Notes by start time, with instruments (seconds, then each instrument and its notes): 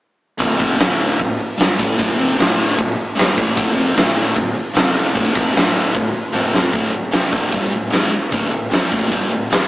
0.38 fingered electric bass D1, distorted electric guitar D2 A2 D3, kick, open hi-hat
0.58 fingered electric bass F1, distorted electric guitar F2 C3 F3, kick
0.78 fingered electric bass D1, distorted electric guitar D2 A2 D3, snare, open hi-hat
1.19 fingered electric bass D1, distorted electric guitar D2 A2, kick, open hi-hat
1.39 muted distorted electric guitar stroke, muted fingered electric bass stroke
1.58 fingered electric bass G1, distorted electric guitar G2 D3 G3, snare, open hi-hat
1.78 fingered electric bass A1, distorted electric guitar A2 E3 A3, kick
1.97 fingered electric bass D1, distorted electric guitar D2 A2 D3, kick, open hi-hat
2.17 fingered electric bass F1, distorted electric guitar F2 C3 F3
2.36 fingered electric bass D1, distorted electric guitar D2 A2 D3, open hi-hat
2.40 snare
2.76 fingered electric bass D1, distorted electric guitar D2 A2, kick, open hi-hat
2.95 muted distorted electric guitar stroke
3.00 muted fingered electric bass stroke
3.15 fingered electric bass G1, distorted electric guitar G2 D3 G3, open hi-hat
3.19 snare
3.35 fingered electric bass A1, distorted electric guitar A2 E3 A3, kick
3.55 fingered electric bass D1, distorted electric guitar D2 A2 D3, kick, open hi-hat
3.74 fingered electric bass F1, distorted electric guitar F2 C3 F3
3.95 fingered electric bass D1, distorted electric guitar D2 A2 D3, snare, open hi-hat
4.35 fingered electric bass D1, distorted electric guitar D2 A2, kick, open hi-hat
4.56 muted distorted electric guitar stroke, muted fingered electric bass stroke
4.74 fingered electric bass F1, distorted electric guitar F2 C3 F3, snare, open hi-hat
5.14 fingered electric bass D1, distorted electric guitar D2 A2 D3, kick, open hi-hat
5.34 fingered electric bass F1, distorted electric guitar F2 C3 F3, kick
5.53 fingered electric bass D1, distorted electric guitar D2 A2 D3, open hi-hat
5.57 snare
5.93 fingered electric bass D1, distorted electric guitar D2 A2, kick, open hi-hat
6.12 muted distorted electric guitar stroke, muted fingered electric bass stroke
6.32 fingered electric bass F1, distorted electric guitar F2 C3 F3, high tom
6.54 snare
6.72 fingered electric bass D1, distorted electric guitar D2 A2 D3, kick, closed hi-hat
6.92 fingered electric bass D1, distorted electric guitar D2 A2, closed hi-hat
7.12 fingered electric bass F1, distorted electric guitar F2 C3 F3, snare, closed hi-hat
7.30 fingered electric bass D1, distorted electric guitar D2 A2 D3, kick, snare, closed hi-hat
7.50 fingered electric bass G1, distorted electric guitar G2 D3 G3, kick, closed hi-hat
7.71 fingered electric bass D1, distorted electric guitar D2 A2, closed hi-hat
7.90 fingered electric bass G#1, distorted electric guitar G#2 D#3 G#3, snare, closed hi-hat
8.10 muted fingered electric bass stroke, muted distorted electric guitar stroke, closed hi-hat
8.31 fingered electric bass D1, distorted electric guitar D2 A2 D3, kick, closed hi-hat
8.49 fingered electric bass D1, distorted electric guitar D2 A2, closed hi-hat
8.69 fingered electric bass F1, distorted electric guitar F2 C3 F3, closed hi-hat
8.73 snare
8.91 fingered electric bass D1, distorted electric guitar D2 A2 D3, kick, closed hi-hat
9.10 fingered electric bass G1, distorted electric guitar G2 D3 G3, kick, closed hi-hat
9.30 fingered electric bass D1, distorted electric guitar D2 A2, closed hi-hat
9.50 fingered electric bass G#1, distorted electric guitar G#2 D#3 G#3, snare, closed hi-hat